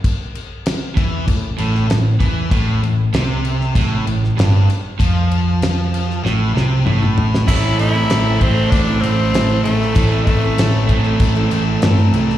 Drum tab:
CC |x-x-x-x-x-x-x-x-|x-x-x-x-x-x-x-x-|x-x-x-x---------|x-x-x-x-x-x-x-x-|
SD |----o------oo---|----o--o---oo---|----o--oo-o----o|----o-------o--o|
T2 |----------------|----------------|------------oo--|----------------|
FT |----------------|----------------|--------------o-|----------------|
BD |o-----o-o-----o-|o-------o-------|o---------------|o-----o-o-------|

CC |x-x-x-x-x-x-x-x-|
SD |----o-------o--o|
T2 |----------------|
FT |----------------|
BD |o-o---o-o-------|